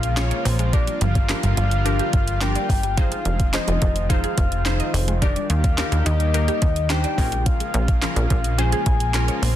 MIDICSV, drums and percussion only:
0, 0, Header, 1, 2, 480
1, 0, Start_track
1, 0, Key_signature, -3, "major"
1, 0, Tempo, 560748
1, 627, Time_signature, 4, 2, 24, 8
1, 8182, End_track
2, 0, Start_track
2, 0, Title_t, "Drums"
2, 27, Note_on_c, 9, 42, 55
2, 113, Note_off_c, 9, 42, 0
2, 144, Note_on_c, 9, 38, 99
2, 147, Note_on_c, 9, 39, 118
2, 148, Note_on_c, 9, 42, 81
2, 230, Note_off_c, 9, 38, 0
2, 233, Note_off_c, 9, 39, 0
2, 233, Note_off_c, 9, 42, 0
2, 266, Note_on_c, 9, 42, 54
2, 352, Note_off_c, 9, 42, 0
2, 389, Note_on_c, 9, 46, 74
2, 475, Note_off_c, 9, 46, 0
2, 506, Note_on_c, 9, 42, 56
2, 592, Note_off_c, 9, 42, 0
2, 627, Note_on_c, 9, 36, 122
2, 627, Note_on_c, 9, 42, 87
2, 713, Note_off_c, 9, 36, 0
2, 713, Note_off_c, 9, 42, 0
2, 748, Note_on_c, 9, 42, 60
2, 834, Note_off_c, 9, 42, 0
2, 865, Note_on_c, 9, 42, 68
2, 951, Note_off_c, 9, 42, 0
2, 987, Note_on_c, 9, 42, 61
2, 988, Note_on_c, 9, 36, 95
2, 1073, Note_off_c, 9, 36, 0
2, 1073, Note_off_c, 9, 42, 0
2, 1106, Note_on_c, 9, 38, 94
2, 1107, Note_on_c, 9, 42, 93
2, 1109, Note_on_c, 9, 39, 119
2, 1191, Note_off_c, 9, 38, 0
2, 1193, Note_off_c, 9, 42, 0
2, 1194, Note_off_c, 9, 39, 0
2, 1227, Note_on_c, 9, 42, 52
2, 1313, Note_off_c, 9, 42, 0
2, 1347, Note_on_c, 9, 42, 81
2, 1432, Note_off_c, 9, 42, 0
2, 1467, Note_on_c, 9, 42, 48
2, 1553, Note_off_c, 9, 42, 0
2, 1589, Note_on_c, 9, 42, 92
2, 1675, Note_off_c, 9, 42, 0
2, 1707, Note_on_c, 9, 42, 49
2, 1792, Note_off_c, 9, 42, 0
2, 1825, Note_on_c, 9, 42, 82
2, 1826, Note_on_c, 9, 36, 103
2, 1910, Note_off_c, 9, 42, 0
2, 1912, Note_off_c, 9, 36, 0
2, 1948, Note_on_c, 9, 42, 55
2, 2033, Note_off_c, 9, 42, 0
2, 2064, Note_on_c, 9, 38, 97
2, 2068, Note_on_c, 9, 39, 121
2, 2068, Note_on_c, 9, 42, 76
2, 2150, Note_off_c, 9, 38, 0
2, 2153, Note_off_c, 9, 39, 0
2, 2154, Note_off_c, 9, 42, 0
2, 2187, Note_on_c, 9, 42, 52
2, 2272, Note_off_c, 9, 42, 0
2, 2306, Note_on_c, 9, 36, 96
2, 2310, Note_on_c, 9, 46, 74
2, 2391, Note_off_c, 9, 36, 0
2, 2395, Note_off_c, 9, 46, 0
2, 2426, Note_on_c, 9, 42, 58
2, 2512, Note_off_c, 9, 42, 0
2, 2547, Note_on_c, 9, 36, 121
2, 2547, Note_on_c, 9, 42, 88
2, 2632, Note_off_c, 9, 42, 0
2, 2633, Note_off_c, 9, 36, 0
2, 2668, Note_on_c, 9, 42, 58
2, 2754, Note_off_c, 9, 42, 0
2, 2785, Note_on_c, 9, 42, 72
2, 2871, Note_off_c, 9, 42, 0
2, 2907, Note_on_c, 9, 42, 62
2, 2908, Note_on_c, 9, 36, 96
2, 2993, Note_off_c, 9, 42, 0
2, 2994, Note_off_c, 9, 36, 0
2, 3026, Note_on_c, 9, 38, 97
2, 3027, Note_on_c, 9, 42, 91
2, 3029, Note_on_c, 9, 39, 121
2, 3112, Note_off_c, 9, 38, 0
2, 3113, Note_off_c, 9, 42, 0
2, 3115, Note_off_c, 9, 39, 0
2, 3148, Note_on_c, 9, 42, 53
2, 3233, Note_off_c, 9, 42, 0
2, 3268, Note_on_c, 9, 42, 79
2, 3269, Note_on_c, 9, 36, 96
2, 3353, Note_off_c, 9, 42, 0
2, 3355, Note_off_c, 9, 36, 0
2, 3387, Note_on_c, 9, 42, 50
2, 3473, Note_off_c, 9, 42, 0
2, 3508, Note_on_c, 9, 36, 91
2, 3510, Note_on_c, 9, 42, 91
2, 3594, Note_off_c, 9, 36, 0
2, 3595, Note_off_c, 9, 42, 0
2, 3628, Note_on_c, 9, 42, 49
2, 3713, Note_off_c, 9, 42, 0
2, 3746, Note_on_c, 9, 42, 80
2, 3747, Note_on_c, 9, 36, 97
2, 3831, Note_off_c, 9, 42, 0
2, 3832, Note_off_c, 9, 36, 0
2, 3868, Note_on_c, 9, 42, 53
2, 3954, Note_off_c, 9, 42, 0
2, 3985, Note_on_c, 9, 38, 98
2, 3988, Note_on_c, 9, 39, 118
2, 3988, Note_on_c, 9, 42, 79
2, 4070, Note_off_c, 9, 38, 0
2, 4074, Note_off_c, 9, 39, 0
2, 4074, Note_off_c, 9, 42, 0
2, 4107, Note_on_c, 9, 42, 53
2, 4193, Note_off_c, 9, 42, 0
2, 4230, Note_on_c, 9, 46, 78
2, 4316, Note_off_c, 9, 46, 0
2, 4348, Note_on_c, 9, 42, 58
2, 4433, Note_off_c, 9, 42, 0
2, 4468, Note_on_c, 9, 36, 117
2, 4468, Note_on_c, 9, 42, 90
2, 4554, Note_off_c, 9, 36, 0
2, 4554, Note_off_c, 9, 42, 0
2, 4589, Note_on_c, 9, 42, 58
2, 4675, Note_off_c, 9, 42, 0
2, 4706, Note_on_c, 9, 42, 71
2, 4792, Note_off_c, 9, 42, 0
2, 4828, Note_on_c, 9, 42, 61
2, 4829, Note_on_c, 9, 36, 99
2, 4914, Note_off_c, 9, 36, 0
2, 4914, Note_off_c, 9, 42, 0
2, 4947, Note_on_c, 9, 38, 96
2, 4948, Note_on_c, 9, 42, 84
2, 4950, Note_on_c, 9, 39, 118
2, 5033, Note_off_c, 9, 38, 0
2, 5034, Note_off_c, 9, 42, 0
2, 5036, Note_off_c, 9, 39, 0
2, 5068, Note_on_c, 9, 42, 52
2, 5154, Note_off_c, 9, 42, 0
2, 5188, Note_on_c, 9, 42, 78
2, 5273, Note_off_c, 9, 42, 0
2, 5308, Note_on_c, 9, 42, 51
2, 5393, Note_off_c, 9, 42, 0
2, 5430, Note_on_c, 9, 42, 97
2, 5516, Note_off_c, 9, 42, 0
2, 5548, Note_on_c, 9, 42, 49
2, 5634, Note_off_c, 9, 42, 0
2, 5665, Note_on_c, 9, 42, 80
2, 5667, Note_on_c, 9, 36, 102
2, 5751, Note_off_c, 9, 42, 0
2, 5752, Note_off_c, 9, 36, 0
2, 5788, Note_on_c, 9, 42, 56
2, 5873, Note_off_c, 9, 42, 0
2, 5905, Note_on_c, 9, 38, 96
2, 5908, Note_on_c, 9, 39, 120
2, 5908, Note_on_c, 9, 42, 78
2, 5990, Note_off_c, 9, 38, 0
2, 5993, Note_off_c, 9, 39, 0
2, 5994, Note_off_c, 9, 42, 0
2, 6026, Note_on_c, 9, 42, 53
2, 6112, Note_off_c, 9, 42, 0
2, 6146, Note_on_c, 9, 36, 100
2, 6149, Note_on_c, 9, 46, 72
2, 6232, Note_off_c, 9, 36, 0
2, 6235, Note_off_c, 9, 46, 0
2, 6267, Note_on_c, 9, 42, 57
2, 6352, Note_off_c, 9, 42, 0
2, 6387, Note_on_c, 9, 42, 85
2, 6388, Note_on_c, 9, 36, 125
2, 6473, Note_off_c, 9, 36, 0
2, 6473, Note_off_c, 9, 42, 0
2, 6509, Note_on_c, 9, 42, 58
2, 6594, Note_off_c, 9, 42, 0
2, 6626, Note_on_c, 9, 42, 69
2, 6712, Note_off_c, 9, 42, 0
2, 6748, Note_on_c, 9, 36, 95
2, 6748, Note_on_c, 9, 42, 61
2, 6833, Note_off_c, 9, 42, 0
2, 6834, Note_off_c, 9, 36, 0
2, 6867, Note_on_c, 9, 38, 96
2, 6868, Note_on_c, 9, 42, 90
2, 6870, Note_on_c, 9, 39, 122
2, 6952, Note_off_c, 9, 38, 0
2, 6954, Note_off_c, 9, 42, 0
2, 6955, Note_off_c, 9, 39, 0
2, 6988, Note_on_c, 9, 42, 53
2, 7074, Note_off_c, 9, 42, 0
2, 7108, Note_on_c, 9, 42, 77
2, 7109, Note_on_c, 9, 36, 98
2, 7193, Note_off_c, 9, 42, 0
2, 7195, Note_off_c, 9, 36, 0
2, 7228, Note_on_c, 9, 42, 50
2, 7313, Note_off_c, 9, 42, 0
2, 7350, Note_on_c, 9, 42, 91
2, 7435, Note_off_c, 9, 42, 0
2, 7468, Note_on_c, 9, 42, 50
2, 7553, Note_off_c, 9, 42, 0
2, 7585, Note_on_c, 9, 42, 82
2, 7587, Note_on_c, 9, 36, 102
2, 7670, Note_off_c, 9, 42, 0
2, 7672, Note_off_c, 9, 36, 0
2, 7707, Note_on_c, 9, 42, 55
2, 7793, Note_off_c, 9, 42, 0
2, 7824, Note_on_c, 9, 38, 92
2, 7827, Note_on_c, 9, 39, 118
2, 7827, Note_on_c, 9, 42, 81
2, 7910, Note_off_c, 9, 38, 0
2, 7913, Note_off_c, 9, 39, 0
2, 7913, Note_off_c, 9, 42, 0
2, 7946, Note_on_c, 9, 42, 51
2, 8032, Note_off_c, 9, 42, 0
2, 8070, Note_on_c, 9, 46, 75
2, 8155, Note_off_c, 9, 46, 0
2, 8182, End_track
0, 0, End_of_file